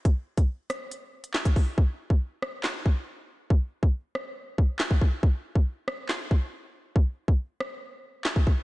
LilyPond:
\new DrumStaff \with { instrumentName = "Drums" } \drummode { \time 4/4 \tempo 4 = 139 <hh bd>8. <hh bd>16 r8 <hh ss>8 hh8. hh16 <hc sn>16 <hh bd>16 <hho bd>8 | bd8. bd16 r8 ss8 <hc sn>8 bd8 r4 | bd8. bd16 r8 ss8 r8 bd8 <hc sn>16 bd16 bd8 | bd8. bd16 r8 ss8 <hc sn>8 bd8 r4 |
bd8. bd16 r8 ss8 r4 <hc sn>16 bd16 bd8 | }